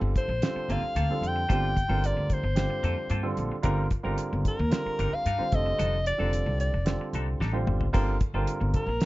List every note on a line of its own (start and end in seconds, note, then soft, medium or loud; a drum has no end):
0.00 0.12 G1 medium
0.00 0.26 D3 medium
0.00 0.26 G3 medium
0.00 0.26 C4 medium
0.00 0.27 F4 medium
0.00 0.27 A4 medium
0.00 muted clean electric guitar stroke soft
0.16 0.74 C5 medium
0.16 kick medium
0.16 closed hi-hat medium
0.28 0.39 A#1 medium
0.28 muted clean electric guitar stroke soft
0.42 0.94 D3 medium
0.42 0.93 G3 medium
0.42 0.94 C4 medium
0.42 0.94 F4 medium
0.42 0.94 A4 medium
0.42 snare loud
0.42 closed hi-hat medium
0.55 muted upright bass stroke soft
0.55 muted clean electric guitar stroke soft
0.68 0.80 G1 medium
0.68 0.83 A#3 medium
0.68 0.83 C4 medium
0.68 0.82 F4 medium
0.68 0.82 A4 medium
0.68 1.29 F5 medium
0.68 closed hi-hat soft
0.82 muted upright bass stroke soft
0.82 muted clean electric guitar stroke soft
0.95 1.06 D2 medium
0.95 1.12 A#3 medium
0.95 1.13 C4 medium
0.95 1.12 F4 medium
0.95 1.13 A4 medium
0.95 closed hi-hat medium
1.09 1.41 D3 medium
1.09 1.40 G3 medium
1.09 1.41 C4 medium
1.09 1.41 F4 medium
1.09 1.41 A4 medium
1.09 muted upright bass stroke soft
1.21 1.43 F2 medium
1.21 muted clean electric guitar stroke soft
1.21 closed hi-hat medium
1.27 2.08 G5 medium
1.36 muted clean electric guitar stroke soft
1.49 1.82 G1 medium
1.49 1.70 D3 medium
1.49 1.70 G3 medium
1.49 1.66 A#3 medium
1.49 1.66 C4 medium
1.49 1.70 C4 medium
1.49 1.66 F4 medium
1.49 1.70 F4 medium
1.49 1.71 G4 medium
1.49 1.66 A4 medium
1.49 kick medium
1.49 closed hi-hat medium
1.75 1.82 F4 soft
1.75 1.83 G4 soft
1.75 muted clean electric guitar stroke soft
1.75 kick medium
1.75 closed hi-hat medium
1.88 2.11 G1 medium
1.88 2.40 D3 medium
1.88 2.40 G3 medium
1.88 2.40 C4 medium
1.88 2.02 C4 soft
1.88 2.40 F4 medium
1.88 2.02 F4 soft
1.88 2.03 A4 soft
1.88 2.41 A#4 medium
2.04 2.34 D5 medium
2.04 muted clean electric guitar stroke soft
2.04 closed hi-hat medium
2.16 2.38 D2 medium
2.16 muted clean electric guitar stroke soft
2.30 3.39 C5 medium
2.30 kick medium
2.30 closed hi-hat soft
2.43 2.65 G1 medium
2.43 muted clean electric guitar stroke soft
2.55 3.08 D3 medium
2.55 3.07 G3 medium
2.55 3.08 C4 medium
2.55 3.08 F4 medium
2.55 3.08 G4 medium
2.55 snare loud
2.55 closed hi-hat medium
2.70 muted clean electric guitar stroke soft
2.83 2.94 F2 medium
2.83 2.97 A#3 medium
2.83 2.96 C4 medium
2.83 2.96 F4 medium
2.83 2.96 A4 medium
2.83 closed hi-hat soft
2.97 muted clean electric guitar stroke soft
3.10 3.32 G2 medium
3.10 3.27 A#3 medium
3.10 3.27 C4 medium
3.10 3.27 F4 medium
3.10 3.27 A4 medium
3.10 closed hi-hat medium
3.23 3.55 D3 medium
3.23 3.54 G3 medium
3.23 3.54 C4 medium
3.23 3.55 F4 medium
3.23 3.55 A4 medium
3.37 3.48 A#1 medium
3.37 muted clean electric guitar stroke soft
3.37 closed hi-hat soft
3.51 muted upright bass stroke soft
3.51 muted clean electric guitar stroke soft
3.63 3.85 G1 medium
3.63 3.84 D3 medium
3.63 3.84 G3 medium
3.63 3.81 G3 medium
3.63 3.84 C4 medium
3.63 3.81 D4 medium
3.63 3.81 D#4 medium
3.63 3.84 F4 medium
3.63 3.85 A#4 loud
3.63 3.81 A#4 medium
3.63 kick medium
3.63 closed hi-hat medium
3.91 muted clean electric guitar stroke soft
3.91 kick medium
3.91 closed hi-hat medium
4.03 4.16 G1 medium
4.03 4.55 D3 medium
4.03 4.55 G3 medium
4.03 4.55 C4 medium
4.03 4.18 D4 soft
4.03 4.18 D#4 soft
4.03 4.55 F4 medium
4.03 4.55 A#4 medium
4.03 4.18 A#4 medium
4.18 muted clean electric guitar stroke soft
4.18 closed hi-hat medium
4.33 4.43 G1 medium
4.33 muted clean electric guitar stroke soft
4.45 5.16 A#4 medium
4.45 kick medium
4.45 closed hi-hat medium
4.59 4.70 D#2 medium
4.59 muted clean electric guitar stroke soft
4.70 5.22 D3 medium
4.70 5.22 G3 medium
4.70 5.22 C4 medium
4.70 5.23 F4 medium
4.70 5.22 A#4 medium
4.70 snare loud
4.70 closed hi-hat medium
4.86 muted upright bass stroke soft
4.86 muted clean electric guitar stroke soft
4.99 5.10 G1 medium
4.99 5.12 G3 medium
4.99 5.12 D4 medium
4.99 5.11 D#4 medium
4.99 5.11 A#4 medium
4.99 closed hi-hat medium
5.12 5.56 F5 loud
5.12 muted clean electric guitar stroke soft
5.12 muted upright bass stroke soft
5.26 5.36 G2 medium
5.26 5.42 G3 medium
5.26 5.42 D4 medium
5.26 5.42 D#4 medium
5.26 5.43 A#4 medium
5.26 closed hi-hat medium
5.38 5.50 D3 medium
5.38 5.51 G3 medium
5.38 5.50 C4 medium
5.38 5.51 F4 medium
5.38 5.52 C5 medium
5.38 muted upright bass stroke soft
5.52 5.74 F1 medium
5.52 5.95 D3 medium
5.52 5.95 G3 medium
5.52 5.95 C4 medium
5.52 5.95 F4 medium
5.52 5.95 A4 medium
5.52 6.06 D#5 medium
5.52 muted clean electric guitar stroke soft
5.52 kick medium
5.52 closed hi-hat soft
5.66 muted clean electric guitar stroke soft
5.78 6.12 F1 medium
5.78 5.95 G3 medium
5.78 5.95 D4 medium
5.78 5.95 D#4 medium
5.78 5.95 A4 medium
5.78 closed hi-hat medium
6.06 6.13 F4 soft
6.06 6.13 G4 soft
6.06 6.56 D5 medium
6.06 muted clean electric guitar stroke soft
6.06 closed hi-hat medium
6.18 6.41 F1 medium
6.18 6.70 D3 medium
6.18 6.70 G3 medium
6.18 6.70 C4 medium
6.18 6.33 D4 soft
6.18 6.33 D#4 soft
6.18 6.70 F4 medium
6.18 6.70 A4 medium
6.18 6.33 A4 soft
6.33 muted clean electric guitar stroke soft
6.33 closed hi-hat medium
6.46 6.68 C2 medium
6.46 muted clean electric guitar stroke soft
6.60 7.10 D5 medium
6.60 closed hi-hat medium
6.74 6.95 F1 medium
6.74 muted clean electric guitar stroke soft
6.85 7.37 D3 medium
6.85 7.37 G3 medium
6.85 7.37 C4 medium
6.85 7.37 F4 medium
6.85 7.37 A4 medium
6.85 snare medium
6.85 closed hi-hat medium
7.01 muted clean electric guitar stroke soft
7.13 7.37 C2 medium
7.13 7.27 G3 medium
7.13 7.27 D4 medium
7.13 7.27 D#4 medium
7.13 7.27 A4 medium
7.13 closed hi-hat soft
7.28 muted clean electric guitar stroke soft
7.40 7.64 A1 medium
7.40 7.57 G3 medium
7.40 7.57 D4 medium
7.40 7.57 D#4 medium
7.40 7.57 A4 medium
7.40 snare soft
7.52 7.84 D3 medium
7.52 7.84 G3 medium
7.52 7.84 C4 medium
7.52 7.84 F4 medium
7.52 7.84 C5 medium
7.67 7.91 G1 medium
7.67 muted clean electric guitar stroke soft
7.67 mid tom medium
7.81 muted clean electric guitar stroke soft
7.81 floor tom medium
7.93 8.16 G1 medium
7.93 8.14 D3 loud
7.93 8.14 G3 medium
7.93 8.10 A#3 medium
7.93 8.14 C4 medium
7.93 8.10 C4 medium
7.93 8.10 F4 medium
7.93 8.14 F4 loud
7.93 8.10 A4 medium
7.93 8.14 A#4 loud
7.93 kick medium
7.93 closed hi-hat medium
7.93 splash medium
8.20 muted clean electric guitar stroke soft
8.20 kick medium
8.20 closed hi-hat medium
8.34 8.45 G1 medium
8.34 8.85 D3 medium
8.34 8.85 G3 medium
8.34 8.85 C4 medium
8.34 8.47 C4 soft
8.34 8.85 F4 medium
8.34 8.47 F4 soft
8.34 8.48 A4 soft
8.34 8.86 A#4 medium
8.47 muted clean electric guitar stroke soft
8.47 closed hi-hat medium
8.61 8.72 G1 medium
8.61 muted clean electric guitar stroke soft
8.74 9.05 A#4 medium
8.74 kick medium
8.74 closed hi-hat soft
8.86 8.98 A#1 medium
8.86 muted clean electric guitar stroke soft
9.01 9.05 D3 medium
9.01 9.05 G3 medium
9.01 snare loud
9.01 closed hi-hat medium